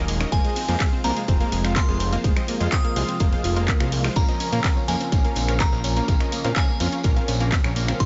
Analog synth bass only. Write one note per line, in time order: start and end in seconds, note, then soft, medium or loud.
0.00 0.25 D#1 loud
0.32 0.40 F1 loud
0.68 0.76 F2 medium
1.04 1.12 C2 medium
1.28 1.43 F1 loud
1.52 1.81 F1 medium
1.88 2.17 F1 loud
2.24 2.32 F1 loud
2.60 2.68 F2 medium
2.96 3.04 C2 medium
3.20 3.35 F1 loud
3.44 3.73 F1 loud
3.80 4.09 C2 medium
4.16 4.24 A#1 loud
4.52 4.60 A#2 medium
4.88 4.96 F2 medium
5.12 5.27 A#1 loud
5.36 5.65 A#1 medium
5.72 6.01 A#1 loud
6.08 6.16 A#1 loud
6.45 6.52 A#2 medium
6.80 6.88 F2 medium
7.04 7.19 A#1 loud
7.28 7.57 A#1 loud
7.64 7.93 A#1 loud
8.00 8.05 G#1 loud